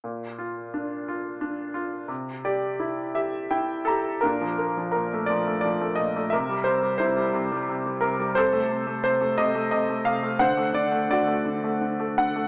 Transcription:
<<
  \new Staff \with { instrumentName = "Upright piano" } { \time 3/4 \key bes \major \tempo 4 = 87 << { r2. | r8 d''4 e''8 g''8 <a' bes''>8 | bes'4 bes'8 d''8 d''8 ees''8 | e''8 c''8 c''4. bes'8 |
c''4 c''8 ees''8 ees''8 f''8 | fis''8 d''8 d''4. fis''8 | } \\ { r2. | r2. | d'4. r4. | bes'4 e'4. r8 |
a'4. r4. | c''4 fis'4. r8 | } >> }
  \new Staff \with { instrumentName = "Upright piano" } { \clef bass \time 3/4 \key bes \major bes,8 f'8 d'8 f'8 d'8 f'8 | c8 g'8 e'8 g'8 e'8 g'8 | bes,16 f16 bes16 f16 bes,16 a16 f16 a16 f16 a16 bes,16 a16 | c16 g16 c16 g16 c16 g16 c16 g16 c16 g16 c16 g16 |
c16 a16 c16 a16 c16 a16 c16 a16 c16 a16 c16 a16 | d16 a16 d16 a16 d16 a16 d16 a16 d16 a16 d16 a16 | }
>>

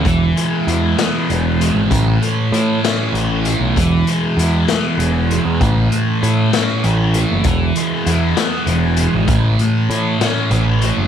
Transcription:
<<
  \new Staff \with { instrumentName = "Distorted electric guitar" } { \clef bass \time 6/8 \key a \major \tempo 4. = 65 e8 gis8 e'8 b8 e8 gis8 | a,8 a8 e'8 cis'8 e8 a8 | e8 gis8 e'8 b8 e8 gis8 | a,8 a8 e'8 cis'8 e8 a8 |
e8 gis8 e'8 b8 e8 gis8 | a,8 a8 e'8 cis'8 e8 a8 | }
  \new Staff \with { instrumentName = "Picked electric bass" } { \clef bass \time 6/8 \key a \major e,,8 r8 e,8 r8 e,,8. gis,,16 | a,,8 r8 a,8 r8 a,,8. b,,16 | e,,8 r8 e,8 r8 e,,8. e,16 | a,,8 r8 a,8 r8 a,,8. fis,,16 |
e,,8 r8 e,8 r8 e,,8. gis,,16 | a,,8 r8 a,8 r8 a,,8. fis,,16 | }
  \new DrumStaff \with { instrumentName = "Drums" } \drummode { \time 6/8 <hh bd>8 hh8 hh8 <hh sn>8 hh8 hh8 | <hh bd>8 hh8 hh8 <hh sn>8 hh8 hh8 | <hh bd>8 hh8 hh8 <hh sn>8 hh8 hh8 | <hh bd>8 hh8 hh8 <hh sn>8 hh8 hh8 |
<hh bd>8 hh8 hh8 <hh sn>8 hh8 hh8 | <hh bd>8 hh8 hh8 <hh sn>8 hh8 hh8 | }
>>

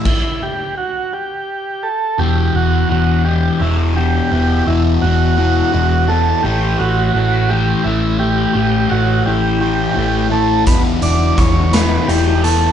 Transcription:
<<
  \new Staff \with { instrumentName = "Transistor combo organ" } { \time 6/8 \key e \minor \tempo 4. = 57 e'8 g'8 fis'8 g'4 a'8 | g'8 fis'8 fis'8 g'8 e'8 g'8~ | g'8 e'8 fis'8 fis'4 a'8 | g'8 fis'8 fis'8 g'8 e'8 g'8~ |
g'8 fis'8 g'8 g'4 a'8 | b'8 d''8 cis''8 b'8 g'8 a'8 | }
  \new Staff \with { instrumentName = "Distorted electric guitar" } { \clef bass \time 6/8 \key e \minor r2. | <e, b, e>8 <b, e>8 <e, b, e>8 <b, e>8 <e, b, e>8 <b, e>8 | <e, b, e>8 <b, e>8 <e, b, e>8 <b, e>8 <e, b, e>8 <b, e>8 | <a, e a>8 <e a>8 <a, e a>8 <e a>8 <a, e a>8 <e a>8 |
<a, e a>8 <e a>8 <a, e a>8 <e a>8 <a, e a>8 <e a>8 | <e, b, e>8 <b, e>8 <e, b, e>8 <b, e>8 <e, b, e>8 <b, e>8 | }
  \new Staff \with { instrumentName = "Picked electric bass" } { \clef bass \time 6/8 \key e \minor r2. | e,,8 e,,8 e,,4 e,,4 | e,,8 e,,8 e,,4 e,,4 | a,,8 a,,8 a,,4 a,,4 |
a,,8 a,,8 a,,4 a,,4 | e,,8 e,,8 e,,4 e,,4 | }
  \new DrumStaff \with { instrumentName = "Drums" } \drummode { \time 6/8 <cymc bd>4. r4. | r4. r4. | r4. r4. | r4. r4. |
r4. r4. | <hh bd>8 hh8 <hh bd>8 <hh sn>8 hh8 hh8 | }
>>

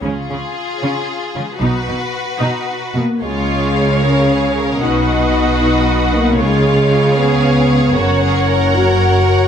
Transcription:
<<
  \new Staff \with { instrumentName = "Violin section" } { \time 6/8 \key des \mixolydian \tempo 4. = 76 << { f'2. | ges'2~ ges'8 r8 | f''2. | ges''2. |
f''2. | ges''2. | } \\ { r2. | r2. | des''2. | ges''2. |
des''2.~ | des''2. | } >> }
  \new Staff \with { instrumentName = "Violin section" } { \time 6/8 \key des \mixolydian aes'2. | ces''2~ ces''8 r8 | f'4. bes'8 aes'8 bes'8 | ges'2. |
f'4. aes'4. | ges'8 aes'8 bes'2 | }
  \new Staff \with { instrumentName = "Viola section" } { \time 6/8 \key des \mixolydian << { r2. | r2. | des''2. | ees''2. |
des''2.~ | des''2. | } \\ { des'8 des'8 r8 des'8 r8 aes8 | ees'8 ees'8 r8 ees'8 r8 ces'8 | aes'2. | ces''2. |
aes'2. | bes'2. | } >> }
  \new Staff \with { instrumentName = "French horn section" } { \time 6/8 \key des \mixolydian r2. | r2 r8 bes8 | aes4. des'4. | ees'4. ees'4 bes8 |
aes4. ces'4. | des'4. ges'4. | }
  \new Staff \with { instrumentName = "Cello section" } { \clef bass \time 6/8 \key des \mixolydian des8 des8 r8 des8 r8 des8 | ces8 ces8 r8 ces8 r8 ces8 | des2. | ces2. |
des2. | ges,2. | }
  \new Staff \with { instrumentName = "Double bass section" } { \clef bass \time 6/8 \key des \mixolydian des,8 r2 r8 | ces,8 r2 r8 | des,2. | ces,2. |
des,2. | ges,,2. | }
>>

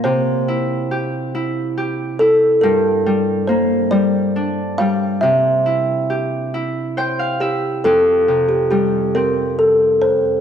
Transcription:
<<
  \new Staff \with { instrumentName = "Kalimba" } { \time 6/8 \key f \major \tempo 4. = 46 c''2~ c''8 a'8 | bes'4 c''8 d''4 f''8 | e''2~ e''8 g'8 | a'8. g'16 g'8 bes'8 a'8 c''8 | }
  \new Staff \with { instrumentName = "Harp" } { \time 6/8 \key f \major << { r2. | r2. | r2 g''16 f''16 e''8 | r2. | } \\ { c8 e'8 g'8 e'8 g'8 e'8 | g,8 g8 bes8 g8 d'8 g8 | c8 e'8 g'8 e'8 c''8 e'8 | f,8 c8 g8 c'4. | } >> }
>>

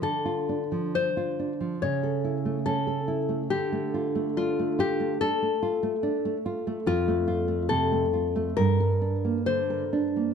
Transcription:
<<
  \new Staff \with { instrumentName = "Nylon-string guitar" } { \time 4/4 \key d \minor \tempo 4 = 70 a'4 c''4 cis''4 a'4 | g'4 f'8 g'8 a'2 | f'4 a'4 bes'4 c''4 | }
  \new Staff \with { instrumentName = "Nylon-string guitar" } { \time 4/4 \key d \minor d16 f'16 d'16 f16 d'16 f'16 d'16 f16 cis16 a'16 e'16 a16 cis'16 a'16 e'16 a16 | d16 a16 f'16 a16 d'16 a16 f'16 a16 d'16 a16 f'16 a16 d'16 a16 f'16 a16 | f,16 a16 f'16 a16 c16 a16 f'16 a16 g,16 bes'16 d'16 bes16 d16 bes'16 d'16 bes16 | }
>>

